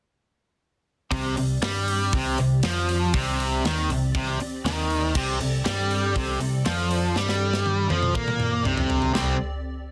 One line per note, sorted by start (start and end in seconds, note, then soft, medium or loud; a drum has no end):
1.11 1.35 C2 loud
1.11 1.36 C3 loud
1.11 9.11 C4 medium
1.11 5.12 G4 medium
1.11 9.11 D5 medium
1.11 kick loud
1.11 open hi-hat medium
1.37 1.61 C2 medium
1.37 1.57 C3 medium
1.37 open hi-hat medium
1.62 2.09 G2 medium
1.62 2.12 G3 medium
1.62 snare loud
1.62 open hi-hat medium
1.88 open hi-hat medium
2.13 2.36 C2 medium
2.13 2.38 C3 loud
2.13 kick loud
2.13 open hi-hat medium
2.38 2.62 C2 medium
2.38 2.59 C3 medium
2.38 open hi-hat medium
2.63 3.10 F2 loud
2.63 3.14 F3 loud
2.63 snare loud
2.63 open hi-hat medium
2.89 open hi-hat medium
3.14 3.61 C2 loud
3.14 3.64 C3 loud
3.14 kick loud
3.14 open hi-hat medium
3.40 open hi-hat medium
3.64 3.88 D#2 medium
3.64 3.90 D#3 loud
3.64 snare loud
3.64 open hi-hat medium
3.89 4.13 C2 medium
3.89 4.11 C3 medium
3.89 open hi-hat medium
4.14 4.38 C2 medium
4.14 4.40 C3 loud
4.14 kick loud
4.14 open hi-hat medium
4.39 muted picked electric bass stroke soft
4.39 muted overdriven electric guitar stroke medium
4.39 open hi-hat medium
4.65 5.12 D#2 medium
4.65 5.15 D#3 loud
4.65 snare loud
4.65 open hi-hat medium
4.90 open hi-hat medium
5.15 5.39 C2 loud
5.15 5.39 C3 loud
5.15 9.11 A4 medium
5.15 kick medium
5.15 crash medium
5.40 5.64 C2 medium
5.40 5.61 C3 medium
5.40 open hi-hat medium
5.65 6.13 G2 medium
5.65 6.15 G3 loud
5.65 snare loud
5.65 open hi-hat medium
5.91 open hi-hat medium
6.16 6.39 C2 medium
6.16 6.40 C3 loud
6.16 kick medium
6.16 open hi-hat medium
6.40 6.63 C2 medium
6.40 6.61 C3 medium
6.40 open hi-hat medium
6.65 7.13 F2 medium
6.65 7.15 F3 loud
6.65 snare loud
6.65 open hi-hat medium
6.91 open hi-hat medium
7.16 7.87 G2 loud
7.16 7.90 G3 loud
7.16 snare medium
7.29 snare medium
7.53 snare medium
7.66 high tom medium
7.90 8.14 F2 loud
7.90 8.14 F3 loud
7.90 high tom medium
8.02 mid tom medium
8.14 8.62 A#2 loud
8.14 8.64 A#3 loud
8.14 kick loud
8.28 mid tom medium
8.40 mid tom medium
8.65 9.11 C2 medium
8.65 9.12 C3 loud
8.65 mid tom loud
8.77 floor tom loud
8.90 floor tom loud
9.02 floor tom medium
9.14 9.38 C2 loud
9.14 9.34 C3 loud
9.14 9.35 G3 loud
9.14 9.38 C4 medium
9.14 9.35 C4 loud
9.14 9.37 G4 medium
9.14 9.38 D5 medium
9.14 snare medium